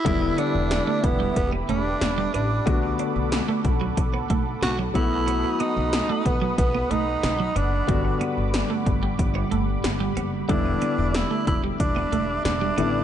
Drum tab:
HH |xxxxxxxx|xxxxxxxx|xxxxxxxx|xxxxxxxx|
SD |--o---o-|--o---o-|--o---o-|--o---o-|
BD |o--oo---|o--ooo-o|---oo---|o--oo---|

HH |xxxxxxxx|
SD |--o---o-|
BD |o--oo---|